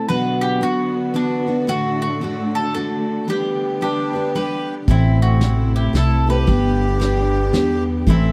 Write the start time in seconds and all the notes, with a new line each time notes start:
0.08 B2 D3 F#3 B3 D4 F#4 B4
0.41 G4
0.61 B3 D4 F#4 B4
1.14 B3 D4 F#4 B4
1.46 B3 D4 F#4 B4
1.67 A2 D3 A3 D4 F#4 A4
2.02 F#4
2.21 A3 D4 F#4 A4
2.55 A4
2.74 A3 D4 F#4 A4
3.28 G3 B3 D4 G4 B4
3.81 G3 D4 G4 B4
4.13 D4 G4 B4
4.35 G3 D4 G4 B4
4.88 A1 A2 C3 E3 A3 C4 E4 A4, kick, closed hi-hat
5.22 C4 F#4
5.41 A3 C4 E4 A4, snare, closed hi-hat
5.75 E4 G4
5.93 C2 A3 C4 E4 A4, snare, closed hi-hat
6.26 A3 C4 E4 G4 A4 B4
6.47 G1 D3 G3 B3 D4 G4 B4, kick, closed hi-hat
7.00 G3 D4 G4 B4, snare, closed hi-hat
7.53 E2 G3 D4 G4 B4, snare, closed hi-hat
8.07 A1 A2 C3 E3 A3 C4 E4 A4, kick, closed hi-hat
8.11 C4